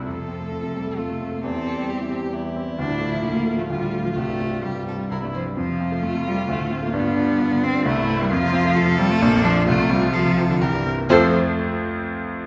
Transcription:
<<
  \new Staff \with { instrumentName = "Violin" } { \time 3/4 \key f \major \tempo 4 = 131 a'2 f'4 | a'4 g'4 e'4~ | e'2 f'4 | g'4 g'8 a'8 bes'8 c''8 |
f'2. | d'2 e'4 | f'4 a'2 | f'4 a'4 g'8 r8 |
c''8 r2 r8 | }
  \new Staff \with { instrumentName = "Viola" } { \time 3/4 \key f \major a'2. | g'2. | f'2.~ | f'2 e'8 r8 |
f'2.~ | f'2 e'4 | f'2 d'4 | f'2 bes'8 r8 |
a'8 r2 r8 | }
  \new Staff \with { instrumentName = "Cello" } { \clef bass \time 3/4 \key f \major f4. g8 a8. bes16 | c'4. r4. | d'4 bes8. a16 g8. f16 | a4 g4~ g16 a16 f16 g16 |
f4 a8 g8 a8. bes16 | b4. c'8 a8. g16 | f4. g16 a16 bes8 f8 | a8 g8 f8. d16 e4 |
f8 r2 r8 | }
  \new Staff \with { instrumentName = "Grand piano" } { \clef bass \time 3/4 \key f \major f,16 c16 c'16 a16 f,16 c16 c'16 a16 f,16 c16 c'16 a16 | e,16 e16 c'16 g16 e,16 e16 c'16 g16 e,16 e16 c'16 g16 | d,16 a,16 a16 f16 d,16 a,16 a16 f16 d,16 a,16 a16 f16 | c,16 g,16 c'16 g16 c,16 g,16 c'16 g16 c,16 g,16 c'16 g16 |
f,16 c16 c'16 a16 f,16 c16 c'16 a16 d,16 a,16 c'16 a16 | g,16 d16 d'16 g16 g,16 d16 d'16 g16 c,16 g,16 c'16 bes16 | f,16 c16 c'16 a16 f,16 c16 c'16 a16 bes,,16 f,16 d'16 f16 | c,16 c16 c'16 f16 c,16 c16 c'16 f16 c,16 g,16 c'16 bes16 |
<f, f a c' f' c''>8 r2 r8 | }
>>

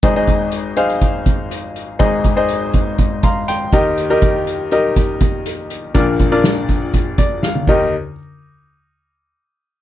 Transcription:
<<
  \new Staff \with { instrumentName = "Grand piano" } { \time 4/4 \key aes \lydian \tempo 4 = 122 << { r1 | r2 r8 <f'' bes'' c'''>8 <g'' c'''>4 | r1 | r2 r8 d''8 f''8 r8 |
r1 | } \\ { <ees' aes' c'' ees''>16 <ees' aes' c'' ees''>4 r16 <ees' aes' c'' f''>4. r4 | <ees' aes' c'' ees''>8 r16 <ees' aes' c'' ees''>4. r4 r16 <ees' g' bes' ees''>8 | r16 <ees' g' bes' ees''>4 r16 <ees' g' bes' ees''>4. r4 | <d' f' bes' d''>8 r16 <d' f' bes' d''>4. r4 r16 <ees' g' bes' ees''>8 |
r1 | } >> }
  \new Staff \with { instrumentName = "Grand piano" } { \clef bass \time 4/4 \key aes \lydian <aes,, aes,>1 | <aes,, aes,>2.~ <aes,, aes,>8 <ees, ees>8~ | <ees, ees>2.~ <ees, ees>8 r8 | <bes,, bes,>2.~ <bes,, bes,>8 ees,8 |
r1 | }
  \new DrumStaff \with { instrumentName = "Drums" } \drummode { \time 4/4 <hh bd>8 <hh bd>8 hh8 hh16 hh16 <hh bd>8 <hh bd>8 hh8 hh8 | <hh bd>8 <hh bd>8 hh8 <hh bd>8 <hh bd>8 <hh bd>8 hh8 <hh bd>8 | hh8 <hh bd>8 hh8 hh8 <hh bd>8 <hh bd>8 hh8 hh8 | <hh bd>8 <hh bd>8 <hh sn>8 <hh bd>8 <hh bd>8 <hh bd>8 sn16 tommh16 <cymc bd>8 |
r4 r4 r4 r4 | }
>>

